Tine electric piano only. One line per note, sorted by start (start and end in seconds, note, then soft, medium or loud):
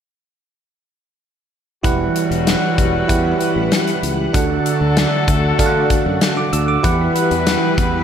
1.83 2.74 E3 medium
1.83 3.01 E4 medium
1.83 3.01 G4 medium
1.83 3.01 B4 medium
1.83 3.01 F#5 medium
3.08 4.26 E4 medium
3.08 4.26 G4 medium
3.08 4.26 B4 medium
3.08 4.26 F#5 medium
4.33 5.24 D3 medium
4.33 5.51 D4 medium
4.33 5.51 F#4 medium
4.33 5.51 A4 medium
4.33 5.51 F#5 medium
5.58 6.76 D4 medium
5.58 6.76 F#4 medium
5.58 6.76 A4 medium
5.58 5.66 F5 medium
5.66 6.79 F#5 medium
6.37 6.52 D6 medium
6.53 6.68 E6 medium
6.68 6.98 D6 medium
6.83 7.74 E3 medium
6.83 8.00 E4 medium
6.83 8.01 G4 medium
6.83 8.01 B4 medium
6.83 8.01 F#5 medium